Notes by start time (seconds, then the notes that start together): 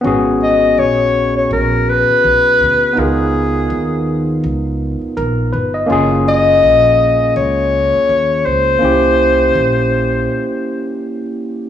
0.01 G#1 B3 C#4
0.05 F#4 G#4
0.43 D#5
0.78 A#1 C#5
1.37 C#5
1.51 A#1 A#4
1.89 B4
2.09 muted upright bass stroke
2.24 B1
2.61 D2
2.93 C#2 B3 D#4
2.97 F4 G#4 A#4
3.70 D#2
4.44 C#2
5.01 muted upright bass stroke
5.17 A#1 A#4
5.53 G1 B4
5.74 D#5
5.86 F#1 A#3 C#4 F4
5.92 G#4
6.28 D#5
6.63 A#1
7.36 C#2 C#5
7.93 muted upright bass stroke
8.09 D#2
8.46 C#2 C5
8.79 C2 A#3 C#4 E4
8.85 G4
9.55 A#1